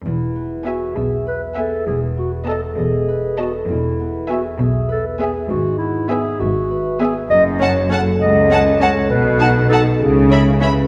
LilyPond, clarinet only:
\new Staff \with { instrumentName = "Clarinet" } { \time 6/8 \key e \major \tempo 4. = 66 e'4 fis'8 gis'8 b'8 a'8 | gis'8 fis'8 a'8 gis'4 fis'8 | e'4 fis'8 gis'8 a'8 gis'8 | fis'8 e'8 gis'8 fis'4 gis'8 |
dis''8 cis''8 r8 dis''4 cis''8 | b'4 a'8 gis'4 r8 | }